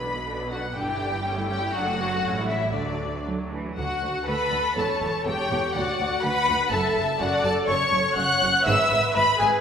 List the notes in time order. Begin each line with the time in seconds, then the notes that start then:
Already playing: B1 B2 B4 B5
0.02 D3 D4
0.14 F#3 B3
0.27 D3 D4
0.40 F#3 B3
0.51 D3 D4 F#4 F#5
0.63 F#3 B3
0.75 G1 G2 D3 D4 G4 G5
0.87 E3 E4
1.00 D3 D4
1.10 E3 E4
1.24 G3 C#4
1.37 A3 E4
1.48 G3 C#4 G4 G5
1.61 A3 E4
1.73 F#1 F#2 F#3 D4 F#4 F#5
1.86 A3 F#4
1.98 F#3 D4
2.10 A3 F#4
2.23 A1 A2 A3 C#4
2.36 G3 E4
2.48 A3 C#4 E4 E5
2.61 G3 E4
2.74 D2 D3 A3 D4 D5
2.86 F#3 F#4
3.00 A3 D4
3.11 F#3 F#4
3.25 F#3 A3 D4
3.37 F#3 F#4
3.51 E3 A3 D4
3.64 F#3 F#4
3.76 D2 F#4 F#5
4.02 D2
4.25 D2 A4 B4 B5
4.52 D2
4.76 E1 E2 A4 C#5 A5
5.01 E1 E2
5.26 E1 E2 G4 C#5 G5
5.50 E1 E2
5.74 D2 F#4 D5 F#5
5.99 D2
6.22 D2 B4 F#5 B5
6.47 D2
6.71 F#1 F#2 A4 E5 A5
6.95 F#1 F#2
7.20 F#1 F#2 F#4 D5 F#5
7.43 F#1 F#2 A4 A5
7.67 F#1 F#2 C#5 C#6
7.92 F#1 F#2
8.16 F#1 F#2 F#5 F#6
8.42 F#1 F#2
8.65 G#1 G#2 B4 E5 E6
8.91 G#1 G#2
9.14 G#1 G#2 B4 B5
9.38 G#1 G#2 G#4 G#5